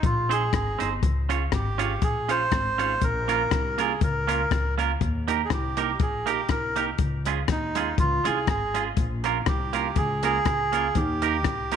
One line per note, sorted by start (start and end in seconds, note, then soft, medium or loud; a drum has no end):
0.03 0.46 A#1 loud
0.03 0.32 F4 medium
0.03 kick loud
0.03 closed hi-hat medium
0.29 0.42 C4 medium
0.29 0.43 D#4 medium
0.29 0.43 G#4 medium
0.29 0.53 G#4 loud
0.29 0.43 C5 medium
0.29 closed hi-hat medium
0.53 0.76 G#1 medium
0.53 0.89 G#4 medium
0.53 kick loud
0.53 cross-stick loud
0.53 closed hi-hat medium
0.79 1.00 G1 medium
0.79 0.92 C4 medium
0.79 0.92 D#4 medium
0.79 0.93 G#4 medium
0.79 0.93 C5 medium
0.79 closed hi-hat medium
1.03 1.45 C#2 loud
1.03 kick loud
1.03 closed hi-hat medium
1.29 1.42 C#4 medium
1.29 1.42 F4 medium
1.29 1.43 G#4 medium
1.29 1.43 C#5 medium
1.29 closed hi-hat medium
1.52 1.95 G#1 medium
1.52 2.04 G4 medium
1.52 kick loud
1.52 cross-stick loud
1.52 closed hi-hat medium
1.78 1.92 C#4 loud
1.78 1.92 F4 loud
1.78 1.92 G#4 loud
1.78 1.92 C#5 loud
1.78 closed hi-hat medium
2.02 2.45 A#1 medium
2.02 2.31 G#4 medium
2.02 muted clean electric guitar stroke medium
2.02 kick loud
2.02 closed hi-hat medium
2.29 2.42 C#4 medium
2.29 2.42 F4 medium
2.29 2.42 G#4 medium
2.29 3.04 C5 loud
2.29 2.42 C#5 medium
2.29 closed hi-hat medium
2.51 2.94 G#1 medium
2.51 muted clean electric guitar stroke soft
2.51 kick loud
2.51 cross-stick loud
2.51 closed hi-hat medium
2.78 2.91 C#4 medium
2.78 2.92 F4 medium
2.78 2.92 G#4 medium
2.78 2.92 C#5 medium
2.78 closed hi-hat medium
3.01 3.44 A#1 loud
3.01 3.82 A#4 loud
3.01 kick loud
3.01 closed hi-hat medium
3.28 3.41 A#3 medium
3.28 3.41 C#4 medium
3.28 3.42 F4 loud
3.28 3.42 A#4 medium
3.28 closed hi-hat medium
3.51 3.94 C2 loud
3.51 kick loud
3.51 cross-stick loud
3.51 closed hi-hat medium
3.78 3.91 A#3 medium
3.78 3.91 C#4 loud
3.78 3.92 F4 medium
3.78 4.01 G#4 medium
3.78 3.92 A#4 loud
3.78 closed hi-hat medium
4.01 4.44 C#2 medium
4.01 4.75 A#4 medium
4.01 kick loud
4.01 closed hi-hat medium
4.27 4.41 A#3 medium
4.27 4.41 C#4 medium
4.27 4.41 F4 medium
4.27 4.41 A#4 medium
4.27 closed hi-hat medium
4.51 4.93 C#2 medium
4.51 kick loud
4.51 cross-stick loud
4.51 closed hi-hat medium
4.78 4.90 A#3 medium
4.78 4.91 C#4 medium
4.78 4.91 F4 medium
4.78 4.91 A#4 medium
4.78 closed hi-hat medium
5.01 5.43 D#2 medium
5.01 kick loud
5.01 closed hi-hat medium
5.28 5.40 A#3 medium
5.28 5.40 D#4 medium
5.28 5.41 G4 medium
5.28 5.41 A#4 medium
5.28 closed hi-hat medium
5.45 5.51 G#4 medium
5.50 6.00 C2 loud
5.50 5.98 G4 medium
5.50 kick loud
5.50 cross-stick loud
5.50 closed hi-hat medium
5.77 5.90 A#3 medium
5.77 5.90 D#4 loud
5.77 5.90 G4 loud
5.77 5.91 A#4 loud
5.77 closed hi-hat medium
5.99 6.42 A#1 medium
5.99 6.28 G#4 medium
5.99 muted clean electric guitar stroke soft
5.99 kick loud
5.99 closed hi-hat medium
6.26 6.39 A#3 medium
6.26 6.39 D#4 medium
6.26 6.40 G4 medium
6.26 6.49 G4 medium
6.26 6.40 A#4 medium
6.26 closed hi-hat medium
6.49 6.92 C2 medium
6.49 6.86 A#4 loud
6.49 muted clean electric guitar stroke soft
6.49 kick loud
6.49 cross-stick loud
6.49 closed hi-hat medium
6.76 6.89 A#3 medium
6.76 6.89 D#4 medium
6.76 6.89 G4 medium
6.76 6.90 A#4 medium
6.76 closed hi-hat medium
6.98 7.41 C#2 medium
6.98 kick loud
6.98 closed hi-hat medium
7.25 7.39 G#3 medium
7.25 7.39 C#4 medium
7.25 7.40 F4 medium
7.25 7.40 G#4 medium
7.25 closed hi-hat medium
7.48 7.91 D#2 medium
7.48 7.96 D#4 medium
7.48 kick loud
7.48 cross-stick loud
7.48 closed hi-hat medium
7.75 7.88 G#3 medium
7.75 7.89 C#4 medium
7.75 7.89 F4 medium
7.75 7.89 G#4 medium
7.75 closed hi-hat medium
7.98 8.21 C#2 loud
7.98 8.26 F4 loud
7.98 kick loud
7.98 closed hi-hat medium
8.24 8.45 C2 medium
8.24 8.37 G#3 medium
8.24 8.38 C#4 medium
8.24 8.38 F4 medium
8.24 8.48 G#4 medium
8.24 8.38 G#4 medium
8.24 closed hi-hat medium
8.47 8.90 G#1 medium
8.47 8.84 G#4 loud
8.47 kick loud
8.47 cross-stick loud
8.47 closed hi-hat medium
8.74 8.87 G#3 medium
8.74 8.88 C#4 medium
8.74 8.88 F4 medium
8.74 8.88 G#4 medium
8.74 closed hi-hat medium
8.97 9.39 A#1 medium
8.97 kick loud
8.97 closed hi-hat medium
9.24 9.37 A#3 medium
9.24 9.37 C#4 medium
9.24 9.38 F4 loud
9.24 9.38 A#4 medium
9.24 closed hi-hat medium
9.46 9.89 C2 loud
9.46 9.98 G4 medium
9.46 kick loud
9.46 cross-stick loud
9.46 closed hi-hat medium
9.73 9.86 A#3 medium
9.73 9.87 C#4 medium
9.73 9.87 F4 medium
9.73 9.87 A#4 medium
9.73 closed hi-hat medium
9.96 10.39 C#2 loud
9.96 10.23 G#4 loud
9.96 muted clean electric guitar stroke soft
9.96 kick loud
9.96 closed hi-hat medium
10.23 10.36 A#3 medium
10.23 10.36 C#4 medium
10.23 10.37 F4 medium
10.23 10.98 G#4 loud
10.23 10.37 A#4 medium
10.23 closed hi-hat medium
10.45 10.88 C#2 medium
10.45 muted clean electric guitar stroke soft
10.45 kick loud
10.45 cross-stick loud
10.45 closed hi-hat medium
10.72 10.85 A#3 medium
10.72 10.86 C#4 medium
10.72 10.86 F4 loud
10.72 10.87 A#4 medium
10.72 closed hi-hat medium
10.95 11.45 D#2 loud
10.95 11.75 G4 loud
10.95 kick loud
10.95 closed hi-hat medium
11.22 11.35 A#3 medium
11.22 11.35 D#4 medium
11.22 11.36 G4 medium
11.22 11.36 A#4 medium
11.22 closed hi-hat medium
11.44 11.76 C2 medium
11.44 kick loud
11.44 cross-stick loud
11.44 closed hi-hat medium
11.72 11.76 A#3 medium
11.72 11.76 D#4 medium
11.72 11.76 G4 loud
11.72 closed hi-hat medium